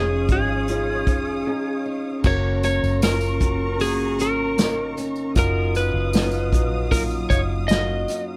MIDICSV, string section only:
0, 0, Header, 1, 2, 480
1, 0, Start_track
1, 0, Key_signature, 6, "major"
1, 0, Tempo, 779221
1, 1381, Time_signature, 4, 2, 24, 8
1, 5155, End_track
2, 0, Start_track
2, 0, Title_t, "String section"
2, 0, Program_c, 0, 48
2, 0, Note_on_c, 0, 73, 70
2, 0, Note_on_c, 0, 77, 67
2, 0, Note_on_c, 0, 87, 84
2, 1359, Note_off_c, 0, 87, 0
2, 1360, Note_off_c, 0, 77, 0
2, 1362, Note_off_c, 0, 73, 0
2, 1386, Note_on_c, 0, 82, 63
2, 1386, Note_on_c, 0, 85, 79
2, 1387, Note_on_c, 0, 70, 69
2, 3285, Note_off_c, 0, 70, 0
2, 3285, Note_off_c, 0, 82, 0
2, 3285, Note_off_c, 0, 85, 0
2, 3310, Note_on_c, 0, 77, 67
2, 3313, Note_on_c, 0, 54, 76
2, 3313, Note_on_c, 0, 87, 86
2, 5155, Note_off_c, 0, 54, 0
2, 5155, Note_off_c, 0, 77, 0
2, 5155, Note_off_c, 0, 87, 0
2, 5155, End_track
0, 0, End_of_file